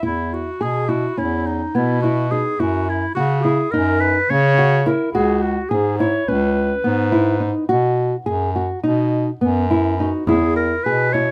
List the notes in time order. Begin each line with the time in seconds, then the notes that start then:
0.02 E2 E4
0.34 F#4
0.60 B2 G#4
0.89 E4 F#4
1.17 E2 C#4 E4
1.47 D#4
1.75 B2 B3 E4
2.02 E4 F#4
2.31 D#4 G#4
2.60 F#2 E4 F#4
2.89 E4
3.15 C#3 F#4
3.43 E4 G#4
3.71 F#2 D#4 A#4
4.00 B4
4.30 C#3 C#4 C#5
4.58 F#4
4.86 E4 A#4
5.13 C#2 F#4 G#4
5.42 F#4
5.69 G#2 G#4
5.99 E4 C#5
6.28 C#2 C#4 B4
6.84 G#2 B3
7.12 E4
7.40 D#4
7.69 B2 F#4
8.26 F#2 G#4
8.55 F#4
8.83 B2 D#4
9.41 F#2 B3
9.71 E4
10.00 D#4 F#4
10.27 E2 E4 G#4, frame drum
10.56 A#4
10.84 B2 G#4 B4
11.13 E4 C#5, frame drum